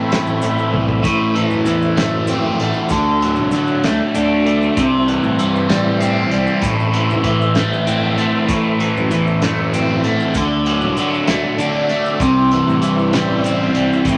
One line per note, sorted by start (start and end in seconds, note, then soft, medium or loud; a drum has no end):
0.00 1.02 A2 medium
0.00 1.02 E3 medium
0.00 1.03 A3 medium
0.00 1.03 C4 medium
0.00 1.03 E4 loud
0.00 1.03 A4 medium
0.00 1.03 C5 medium
0.00 1.03 E5 medium
0.00 1.03 B5 medium
0.11 snare loud
0.11 closed hi-hat medium
0.11 maracas soft
0.26 0.39 A1 medium
0.26 maracas soft
0.42 0.55 A1 medium
0.42 closed hi-hat medium
0.42 maracas medium
0.58 maracas soft
0.73 0.99 C2 medium
0.73 high tom medium
0.89 kick medium
1.03 1.43 A1 loud
1.03 2.59 A2 medium
1.03 4.73 A3 medium
1.03 2.89 E4 medium
1.03 2.89 C5 medium
1.03 4.73 E5 medium
1.03 kick loud
1.03 closed hi-hat medium
1.03 maracas medium
1.36 1.65 E3 medium
1.36 closed hi-hat medium
1.50 1.63 F#2 medium
1.50 maracas soft
1.65 1.91 E2 medium
1.65 2.94 E3 medium
1.65 closed hi-hat medium
1.65 maracas medium
1.82 maracas soft
1.96 2.49 F#1 medium
1.96 2.59 A3 medium
1.96 snare loud
1.96 closed hi-hat medium
2.27 2.90 C4 medium
2.27 closed hi-hat medium
2.27 maracas medium
2.60 2.72 A1 medium
2.60 2.91 A3 medium
2.60 closed hi-hat medium
2.74 maracas soft
2.89 3.39 D2 loud
2.89 4.46 D3 medium
2.89 4.76 D5 medium
2.89 kick loud
2.89 closed hi-hat medium
2.89 maracas medium
2.94 4.76 F#4 medium
3.22 3.53 F#3 medium
3.22 closed hi-hat medium
3.36 3.50 C2 medium
3.36 maracas soft
3.52 3.87 D3 medium
3.52 4.78 F#3 medium
3.52 closed hi-hat medium
3.52 maracas medium
3.67 maracas soft
3.84 3.97 D2 medium
3.84 4.45 A3 medium
3.84 snare loud
3.84 closed hi-hat medium
4.14 4.67 D2 medium
4.14 4.77 D4 medium
4.14 closed hi-hat medium
4.14 maracas loud
4.46 4.77 A3 medium
4.46 closed hi-hat medium
4.62 maracas soft
4.77 5.16 C2 medium
4.77 6.32 C3 medium
4.77 6.62 G3 medium
4.77 10.31 E4 medium
4.77 8.46 C5 medium
4.77 6.62 E5 medium
4.77 kick loud
4.77 closed hi-hat medium
4.77 maracas medium
5.07 5.38 E3 medium
5.07 closed hi-hat medium
5.23 5.36 A2 medium
5.23 maracas soft
5.39 5.65 G2 medium
5.39 6.93 E3 medium
5.39 closed hi-hat medium
5.39 maracas medium
5.56 maracas soft
5.69 6.22 A1 medium
5.69 6.30 G3 medium
5.69 snare loud
5.69 closed hi-hat medium
6.00 7.85 C4 medium
6.00 closed hi-hat medium
6.00 maracas medium
6.31 6.44 C2 medium
6.31 6.63 G3 medium
6.31 closed hi-hat medium
6.47 maracas soft
6.62 7.12 A1 medium
6.62 8.18 A2 medium
6.62 8.48 A3 medium
6.62 14.18 E5 medium
6.62 kick loud
6.62 closed hi-hat medium
6.62 maracas medium
6.80 maracas soft
6.93 7.23 E3 medium
6.93 closed hi-hat medium
6.93 maracas soft
7.10 7.23 F#1 medium
7.10 maracas soft
7.24 7.58 A2 medium
7.24 8.79 E3 medium
7.24 kick medium
7.24 closed hi-hat medium
7.42 maracas soft
7.55 7.69 A1 medium
7.55 8.18 A3 medium
7.55 snare loud
7.55 closed hi-hat medium
7.55 maracas soft
7.73 maracas soft
7.86 8.39 A2 medium
7.86 8.48 C4 medium
7.86 closed hi-hat medium
7.86 maracas medium
8.18 9.43 A3 medium
8.18 closed hi-hat medium
8.18 maracas soft
8.48 8.88 A1 medium
8.48 10.04 A2 medium
8.48 12.18 A3 medium
8.48 10.34 C5 medium
8.48 kick loud
8.48 closed hi-hat medium
8.48 maracas medium
8.80 9.10 E3 medium
8.80 closed hi-hat medium
8.97 9.09 F#2 medium
8.97 maracas soft
9.11 9.38 E2 medium
9.11 10.40 E3 medium
9.11 closed hi-hat medium
9.11 maracas medium
9.27 maracas soft
9.42 9.94 F#1 medium
9.42 10.04 A3 medium
9.42 snare loud
9.42 closed hi-hat loud
9.74 10.35 C4 medium
9.74 closed hi-hat medium
9.74 maracas medium
10.04 10.17 A1 medium
10.04 10.35 A3 medium
10.04 closed hi-hat medium
10.20 maracas soft
10.34 10.83 D2 loud
10.34 11.91 D3 medium
10.34 12.19 F#4 medium
10.34 12.19 D5 medium
10.34 kick loud
10.34 closed hi-hat medium
10.34 maracas medium
10.66 10.97 F#3 medium
10.66 closed hi-hat medium
10.81 10.95 C2 medium
10.81 maracas soft
10.97 11.29 D3 medium
10.97 12.21 F#3 medium
10.97 closed hi-hat medium
10.97 maracas medium
11.14 maracas soft
11.27 11.40 D2 medium
11.27 11.89 A3 medium
11.27 snare loud
11.27 closed hi-hat medium
11.58 12.10 D3 medium
11.58 12.21 D4 medium
11.58 closed hi-hat medium
11.58 maracas medium
11.89 12.21 A3 medium
11.89 closed hi-hat medium
12.06 maracas soft
12.19 12.59 C2 loud
12.19 13.75 C3 medium
12.19 14.04 G3 medium
12.19 14.18 E4 medium
12.19 14.18 C5 medium
12.19 kick loud
12.19 closed hi-hat medium
12.19 maracas medium
12.51 12.81 E3 medium
12.51 closed hi-hat medium
12.67 12.80 A2 medium
12.67 maracas soft
12.82 13.08 G2 medium
12.82 14.18 E3 medium
12.82 closed hi-hat medium
12.82 maracas medium
12.99 maracas soft
13.13 13.65 A1 medium
13.13 13.74 G3 medium
13.13 snare loud
13.13 closed hi-hat loud
13.44 14.18 C4 medium
13.44 closed hi-hat medium
13.44 maracas medium
13.75 13.88 C2 medium
13.75 14.06 G3 medium
13.75 closed hi-hat medium
13.93 maracas soft
14.04 14.18 A1 loud
14.04 14.18 A2 medium
14.04 14.18 A3 medium
14.04 kick loud
14.04 closed hi-hat medium
14.04 maracas medium